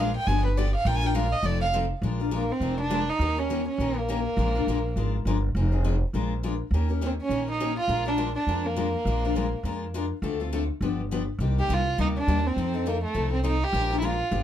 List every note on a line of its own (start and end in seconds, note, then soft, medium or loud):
0.00 0.15 A#1 loud
0.00 0.15 F5 medium
0.16 0.28 G5 loud
0.27 0.74 G1 medium
0.27 0.47 D3 medium
0.27 0.47 F3 medium
0.27 0.47 B3 medium
0.27 0.47 D4 medium
0.27 0.47 G4 medium
0.27 0.44 G#5 loud
0.46 0.59 B4 medium
0.57 0.68 D3 medium
0.57 0.68 F3 medium
0.57 0.68 B3 medium
0.57 0.68 D4 medium
0.57 0.68 G4 loud
0.57 0.74 D5 medium
0.75 0.88 F5 loud
0.85 1.32 A#1 loud
0.85 1.02 F3 medium
0.85 1.03 G#3 medium
0.85 1.03 D4 medium
0.85 1.03 F4 medium
0.85 1.02 A#4 medium
0.85 0.97 G5 medium
0.95 1.08 G#5 loud
1.03 1.14 D4 medium
1.03 1.14 F4 medium
1.03 1.14 A#4 medium
1.03 1.17 G5 medium
1.14 1.25 F3 medium
1.14 1.26 G#3 medium
1.14 1.26 D4 loud
1.14 1.26 F4 loud
1.14 1.26 A#4 medium
1.14 1.34 F5 medium
1.32 1.47 D#5 medium
1.43 1.90 F1 medium
1.43 1.63 F3 medium
1.43 1.63 C4 medium
1.43 1.63 D#4 medium
1.43 1.64 A4 medium
1.43 1.60 D5 medium
1.61 1.68 F5 loud
1.73 1.84 F3 loud
1.73 1.84 C4 medium
1.73 1.84 D#4 medium
1.73 1.85 A4 loud
2.02 2.49 A#1 medium
2.02 2.20 F3 medium
2.02 2.20 G#3 medium
2.02 2.20 D4 medium
2.02 2.20 F4 medium
2.02 2.19 A#4 medium
2.20 2.31 D4 soft
2.20 2.31 F4 soft
2.20 2.31 A#4 soft
2.31 2.42 F3 medium
2.31 2.42 G#3 medium
2.31 2.53 A#3 medium
2.31 2.43 D4 medium
2.31 2.43 F4 medium
2.31 2.43 A#4 medium
2.52 2.80 C4 medium
2.60 3.08 F1 medium
2.60 2.81 F3 medium
2.60 2.81 G#3 medium
2.60 2.81 D4 medium
2.60 2.81 F4 medium
2.60 2.81 A#4 medium
2.81 3.11 D4 loud
2.90 3.01 F3 medium
2.90 3.01 G#3 medium
2.90 3.01 D4 medium
2.90 3.02 F4 medium
2.90 3.02 A#4 loud
3.09 3.40 D#4 loud
3.19 3.66 D#2 medium
3.19 3.37 D#3 medium
3.19 3.37 A#3 medium
3.19 3.37 C#4 medium
3.19 3.36 G4 medium
3.19 3.35 A#4 medium
3.37 3.67 C#4 medium
3.37 3.49 C#4 soft
3.37 3.49 G4 soft
3.37 3.49 A#4 medium
3.50 3.60 D#3 medium
3.50 3.60 A#3 medium
3.50 3.60 C#4 medium
3.50 3.61 G4 medium
3.50 3.61 A#4 loud
3.68 3.99 C#4 medium
3.78 4.25 A#1 medium
3.78 3.98 D#3 medium
3.78 3.99 A#3 medium
3.78 3.99 C#4 medium
3.78 3.99 G4 medium
3.78 3.99 A#4 medium
3.98 5.14 A#3 medium
4.09 4.19 D#3 medium
4.09 4.19 A#3 medium
4.09 4.19 C#4 medium
4.09 4.19 G4 medium
4.09 4.19 A#4 medium
4.37 4.60 A#1 medium
4.37 4.54 F3 medium
4.37 4.54 G#3 medium
4.37 4.54 D4 medium
4.37 4.54 F4 medium
4.37 4.54 A#4 medium
4.55 4.67 D4 soft
4.55 4.67 F4 soft
4.55 4.67 A#4 medium
4.67 4.92 A#1 medium
4.67 4.78 F3 medium
4.67 4.78 G#3 medium
4.67 4.78 D4 medium
4.67 4.78 F4 medium
4.67 4.79 A#4 medium
4.96 5.21 G#1 medium
4.96 5.15 F3 medium
4.96 5.15 G#3 medium
4.96 5.15 D4 medium
4.96 5.15 F4 medium
4.96 5.16 A#4 medium
5.25 5.50 G1 medium
5.25 5.37 F3 medium
5.25 5.37 G#3 medium
5.25 5.36 D4 medium
5.25 5.37 F4 medium
5.25 5.37 A#4 medium
5.55 6.01 F1 medium
5.55 5.72 F3 medium
5.55 5.72 C4 medium
5.55 5.72 D#4 medium
5.55 5.71 G#4 medium
5.72 5.83 C4 soft
5.72 5.84 D#4 soft
5.72 5.84 G#4 medium
5.84 5.95 F3 medium
5.84 5.95 C4 medium
5.84 5.95 D#4 medium
5.84 5.95 G#4 medium
6.13 6.60 A#1 medium
6.13 6.32 F3 medium
6.13 6.33 G#3 medium
6.13 6.33 D4 medium
6.13 6.33 F4 medium
6.13 6.33 A#4 medium
6.43 6.53 F3 medium
6.43 6.54 G#3 medium
6.43 6.53 D4 medium
6.43 6.54 F4 medium
6.43 6.54 A#4 medium
6.71 7.18 D#2 medium
6.71 6.89 D#3 medium
6.71 6.89 A#3 medium
6.71 6.89 C#4 medium
6.71 6.89 G4 medium
6.71 6.88 A#4 medium
6.89 7.01 C#4 soft
6.89 7.01 G4 soft
6.89 7.00 A#4 soft
7.01 7.12 D#3 medium
7.01 7.12 A#3 medium
7.01 7.12 C#4 medium
7.01 7.12 G4 medium
7.01 7.12 A#4 medium
7.06 7.12 C4 medium
7.22 7.47 C#4 loud
7.29 7.76 A#1 medium
7.29 7.49 D#3 medium
7.29 7.50 A#3 medium
7.29 7.50 C#4 medium
7.29 7.50 G4 medium
7.29 7.50 A#4 medium
7.51 7.76 D#4 medium
7.60 7.70 D#3 medium
7.60 7.71 A#3 medium
7.60 7.70 C#4 loud
7.60 7.70 G4 medium
7.60 7.71 A#4 medium
7.80 8.05 F4 loud
7.88 8.35 A#1 medium
7.88 8.05 F3 medium
7.88 8.05 G#3 medium
7.88 8.05 D4 medium
7.88 8.05 F4 medium
7.88 8.04 A#4 medium
8.05 8.34 D4 medium
8.05 8.17 D4 soft
8.05 8.16 F4 soft
8.05 8.17 A#4 medium
8.17 8.28 F3 medium
8.17 8.28 G#3 medium
8.17 8.28 D4 medium
8.17 8.28 F4 medium
8.17 8.29 A#4 medium
8.36 8.67 D4 medium
8.47 8.94 F2 medium
8.47 8.66 F3 medium
8.47 8.67 G#3 medium
8.47 8.67 D4 medium
8.47 8.67 F4 medium
8.47 8.67 A#4 medium
8.66 9.82 A#3 medium
8.76 8.87 F3 medium
8.76 8.87 G#3 medium
8.76 8.87 D4 medium
8.76 8.87 F4 medium
8.76 8.87 A#4 medium
9.05 9.52 A#1 medium
9.05 9.23 F3 medium
9.05 9.23 G#3 medium
9.05 9.23 D4 medium
9.05 9.23 F4 medium
9.05 9.23 A#4 medium
9.25 9.35 D4 soft
9.25 9.35 F4 medium
9.25 9.35 A#4 medium
9.35 9.46 F3 medium
9.35 9.46 G#3 medium
9.35 9.46 D4 medium
9.35 9.46 F4 medium
9.35 9.46 A#4 medium
9.63 10.10 F2 medium
9.63 9.84 F3 medium
9.63 9.84 G#3 medium
9.63 9.84 D4 medium
9.63 9.84 F4 medium
9.63 9.84 A#4 medium
9.94 10.04 F3 medium
9.94 10.05 G#3 medium
9.94 10.04 D4 medium
9.94 10.05 F4 medium
9.94 10.05 A#4 medium
10.22 10.69 D2 medium
10.22 10.39 D3 medium
10.22 10.39 A3 medium
10.22 10.40 C4 medium
10.22 10.40 F4 medium
10.22 10.39 A4 medium
10.40 10.52 C4 soft
10.40 10.52 F4 medium
10.40 10.52 A4 medium
10.53 10.63 D3 medium
10.53 10.63 A3 medium
10.53 10.63 C4 medium
10.53 10.63 F4 medium
10.53 10.63 A4 medium
10.81 11.28 G1 medium
10.81 11.01 D3 medium
10.81 11.01 F3 medium
10.81 11.01 B3 medium
10.81 11.01 D4 medium
10.81 11.01 G4 medium
11.11 11.21 D3 medium
11.11 11.21 F3 medium
11.11 11.22 B3 medium
11.11 11.22 D4 medium
11.11 11.22 G4 medium
11.39 11.62 C2 medium
11.39 11.56 C3 medium
11.39 11.56 G3 medium
11.39 11.57 A#3 medium
11.39 11.57 D#4 medium
11.39 11.57 G4 medium
11.58 11.69 A#3 soft
11.58 11.69 D#4 medium
11.58 11.69 G4 medium
11.58 11.74 G4 medium
11.69 11.94 C2 medium
11.69 11.79 C3 medium
11.69 11.80 G3 medium
11.69 11.80 A#3 medium
11.69 11.80 D#4 medium
11.69 11.80 G4 medium
11.73 12.00 F4 loud
11.98 12.23 D2 medium
11.98 12.17 C3 medium
11.98 12.17 G3 medium
11.98 12.17 A#3 medium
11.98 12.17 D#4 medium
11.98 12.07 D#4 medium
11.98 12.17 G4 medium
12.18 12.48 D4 loud
12.27 12.52 D#2 medium
12.27 12.38 C3 medium
12.27 12.38 G3 medium
12.27 12.38 A#3 medium
12.27 12.39 D#4 medium
12.27 12.39 G4 medium
12.46 12.89 C4 medium
12.56 13.03 F2 medium
12.56 12.74 F3 medium
12.56 12.73 C4 medium
12.56 12.74 D#4 medium
12.56 12.73 A4 medium
12.74 12.86 C4 soft
12.74 12.85 D#4 soft
12.74 12.85 A4 medium
12.86 12.96 F3 medium
12.86 13.03 A#3 medium
12.86 12.97 C4 medium
12.86 12.97 D#4 medium
12.86 12.97 A4 medium
13.04 13.31 A3 medium
13.15 13.62 C2 medium
13.15 13.34 F3 medium
13.15 13.34 C4 medium
13.15 13.34 D#4 medium
13.15 13.35 A4 medium
13.33 13.44 C4 medium
13.44 13.55 F3 medium
13.44 13.55 C4 medium
13.44 13.55 D#4 medium
13.44 13.65 D#4 medium
13.44 13.55 A4 loud
13.63 13.98 G4 loud
13.73 14.20 A#1 loud
13.73 13.90 F3 medium
13.73 13.90 G#3 medium
13.73 13.91 D4 medium
13.73 13.90 F4 medium
13.73 13.89 A#4 medium
13.91 14.02 D4 soft
13.91 14.02 F4 medium
13.91 14.01 A#4 medium
14.00 14.13 F3 medium
14.00 14.13 G#3 medium
14.00 14.13 D4 medium
14.00 14.06 E4 medium
14.00 14.13 F4 loud
14.00 14.13 A#4 medium
14.05 14.43 F4 medium
14.31 14.43 G1 medium
14.31 14.43 D3 medium
14.31 14.43 F3 medium
14.31 14.43 B3 medium
14.31 14.43 D4 medium
14.31 14.43 G4 medium